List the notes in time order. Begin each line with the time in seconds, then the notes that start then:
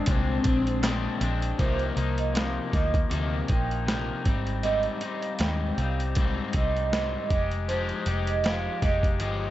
Already playing: D4
0.06 C2 A#2 G#3 C4 D4, kick, closed hi-hat
0.44 A#1 G#3 C4 D4, kick, closed hi-hat
0.67 closed hi-hat
0.82 A#2 G#3 C4 D4, snare, clap, closed hi-hat
1.20 A#1 G#3 C4 D4, closed hi-hat
1.42 closed hi-hat
1.58 C2 C3 F3 A#3 D#4 C5, kick, closed hi-hat
1.79 closed hi-hat
1.96 C2 F3 A#3 D#4, closed hi-hat
2.18 D#5, closed hi-hat
2.33 C3 F3 A#3 D#4, snare, closed hi-hat
2.71 D2 A#3 D#4 D#5, kick, snare, closed hi-hat
2.75 F3
2.94 kick, closed hi-hat
3.10 D2 C3 F3 A#3 D#4, closed hi-hat
3.48 A#1 F3 A#3 D#4 G5, kick, closed hi-hat
3.71 closed hi-hat
3.86 C3 F3 A#3 D#4, snare, closed hi-hat
4.25 G#1 G3 C4 D#4, kick, closed hi-hat
4.47 closed hi-hat
4.63 G#2 G3 C4 D#4 D#5, closed hi-hat
4.83 closed hi-hat
5.01 C4 D#4, closed hi-hat
5.05 G3
5.22 F5, closed hi-hat
5.39 D#2 G#2 G3 C4 G5, snare, closed hi-hat
5.43 D#4
5.78 C2 G3 C4 D#4 F5, closed hi-hat
6.00 closed hi-hat
6.15 G#2 G3 C4 D#4, kick, closed hi-hat
6.53 C2 C4 D#4 D#5, kick, closed hi-hat
6.57 G3
6.77 closed hi-hat
6.92 G#2 G3 C4 D#4 D#5, snare, closed hi-hat
7.30 F1 G#3 D#4 G4, kick, closed hi-hat
7.51 closed hi-hat
7.68 F3 G#3 D#4 G4 C5, closed hi-hat
7.89 closed hi-hat
8.06 F1 G#3 D#4 G4, closed hi-hat
8.27 D#5, closed hi-hat
8.44 F3 G#3 D#4 G4 F5, snare, closed hi-hat
8.82 F1 G#3 D#4 G4 D#5, kick, snare, closed hi-hat
9.03 kick, closed hi-hat
9.20 G1 F3 G#3 D#4 G4, closed hi-hat